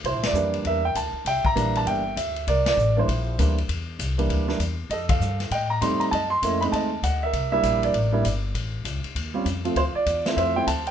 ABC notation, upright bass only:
X:1
M:4/4
L:1/8
Q:"Swing" 1/4=197
K:Cmix
V:1 name="Upright bass" clef=bass
(3C,, B,,, G,,, F,,2 E,,2 D,, z | C,, z B,,,2 G,,,2 D,,2 | C,,2 A,,,2 B,,,2 D,,2 | E,,2 C,,2 D,,2 E,,2 |
F,,2 G,,2 A,,2 F,, z | ^F,,2 =F,,2 ^D,,2 =D,,2 | C,,2 B,,,2 A,,,2 G,,,2 | A,,,2 ^C,, z _E,,2 ^E,,2 |
D,, z E,,2 F,,2 D,,2 |]